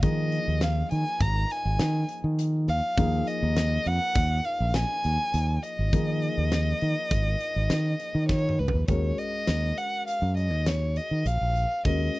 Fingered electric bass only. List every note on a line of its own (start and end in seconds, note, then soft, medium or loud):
0.03 0.37 D#3 medium
0.48 0.82 D#2 medium
0.92 1.03 D#3 medium
1.20 1.44 G#1 medium
1.65 1.77 G#1 medium
1.80 2.03 D#3 loud
2.24 2.70 D#3 medium
2.68 2.80 D#2 medium
2.98 3.21 D#2 medium
3.43 3.77 D#2 loud
3.86 3.98 F2 medium
4.16 4.39 D#2 medium
4.60 4.83 A#1 medium
5.05 5.16 D#2 medium
5.34 5.57 D#2 medium
5.79 5.90 G#1 medium
5.93 6.27 D#3 medium
6.38 6.72 D#2 medium
6.82 6.94 D#3 medium
7.11 7.34 G#1 loud
7.56 7.68 G#1 medium
7.70 7.94 D#3 medium
8.15 8.59 D#3 medium
8.59 8.73 C#2 medium
8.74 8.87 D#2 medium
8.88 9.12 D#2 medium
9.48 9.71 D#2 medium
10.22 10.52 F#2 medium
10.52 10.98 D#2 medium
11.11 11.23 D#3 medium
11.26 11.37 A#1 medium
11.41 11.64 A#1 medium
11.85 12.08 D#2 medium